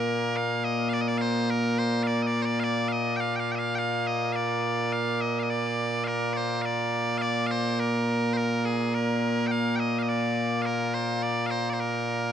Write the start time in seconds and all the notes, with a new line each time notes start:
Already playing: A#2 A#3 A#4
0.37 F5
0.64 D#5
0.89 F5
0.94 D5
1.01 D#5
1.08 D5
1.18 C5 F5
1.50 A#4
1.78 C5
2.03 D5 F5
2.23 D#5
2.27 D5
2.42 C5 D5
2.60 D5 F5
2.88 D#5 F5
3.16 F5 G5
3.36 F5 G5
3.52 D#5 G5
3.59 F5
3.75 F5 G5
4.07 D#5
4.32 D5 F5
4.93 F5
5.21 D#5
5.39 D#5 F5
5.50 D5
6.04 A#4 F5
6.33 C5 D5
6.62 D5 F5
7.18 D5 F5
7.47 F5
7.51 C5
7.80 A#4
8.33 A#4 C5
8.65 G#4
8.94 A#4
9.47 G5
9.51 F5
9.76 D#5 G5
9.99 D#5 F5
10.09 D5
10.62 A#4 F5
10.94 C5
11.23 D5
11.47 F5
11.51 C5
11.70 C5 D5
11.80 A#4